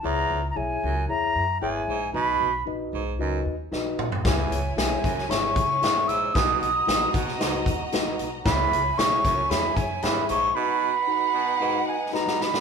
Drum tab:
HH |----------------|----------------|x-x-x-x-x-x-x-x-|x-x-x-x-x-x-x-x-|
SD |----------------|------------o---|o---o--oo---o---|o---o--oo---o---|
T2 |----------------|--------------o-|----------------|----------------|
FT |----------------|---------------o|----------------|----------------|
BD |----------------|----------------|o-----o---o-----|o-----o---o-----|

HH |x-x-x-x-x-x-x-x-|----------------|
SD |o---o---o---o---|------------oooo|
T2 |----------------|----------------|
FT |----------------|----------------|
BD |o-----o---o-----|----------------|